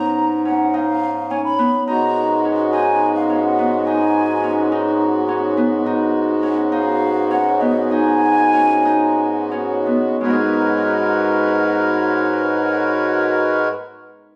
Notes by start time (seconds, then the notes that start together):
Already playing: G#2 B3 C#4 D#4 A#5
0.45 C#4 F#5
0.74 D#4 F5
1.31 C#4 G#5
1.44 B5
1.59 B3
1.87 G#2 G#3 B3 D#4 F#4 A#5
2.45 C#4
2.72 D#4 G#5
3.15 F5
3.30 C#4
3.43 F#5
3.59 B3
3.86 D#4 G#5
4.44 C#4
4.72 D#4
5.29 C#4
5.57 B3
5.85 G#2 D#4
6.43 C#4
6.72 D#4 F5
7.31 C#4 F#5
7.60 B3 D#5
7.90 D#4 G#5
8.54 C#4
8.85 D#4
9.52 C#4
9.86 B3
10.21 G#2 G#3 F#4 A#4 B4 C#5
10.25 B3 D#4
10.33 G#4